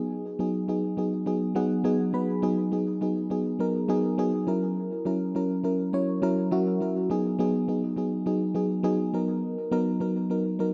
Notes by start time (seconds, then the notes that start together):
Already playing: F#3 B3 D#4 G#4
0.39 F#3 B3 D#4 G#4
0.68 F#3 B3 D#4 G#4
0.97 F#3 B3 D#4 G#4
1.26 F#3 B3 D#4 G#4
1.55 F#3 B3 D#4 G#4 F#5
1.84 F#3 B3 D#4 G#4 G#5
2.13 F#3 B3 D#4 B4 B5
2.42 F#3 B3 D#4 G#4
2.72 F#3 B3 D#4 G#4
3.01 F#3 B3 D#4 G#4
3.30 F#3 B3 D#4 G#4
3.59 F#3 B3 D#4 A#4
3.88 F#3 B3 D#4 G#4
4.18 F#3 B3 D#4 G#4
4.47 F#3 C#4 E4 A#4
5.05 F#3 C#4 E4 A#4
5.35 F#3 C#4 E4 A#4
5.64 F#3 C#4 E4 A#4
5.93 F#3 C#4 E4 C#5
6.22 F#3 C#4 E4 A#4
6.51 F#3 C#4 E4 F#4 E5
6.80 F#3 C#4 E4 A#4
7.10 F#3 B3 D#4 G#4
7.39 F#3 B3 D#4 G#4
7.68 F#3 B3 D#4 G#4
7.96 F#3 B3 D#4 G#4
8.26 F#3 B3 D#4 G#4
8.54 F#3 B3 D#4 G#4
8.83 F#3 B3 D#4 G#4
9.13 F#3 B3 D#4 A#4
9.71 F#3 B3 D#4 A#4
10.00 F#3 B3 D#4 A#4
10.30 F#3 B3 D#4 A#4
10.59 F#3 B3 D#4 A#4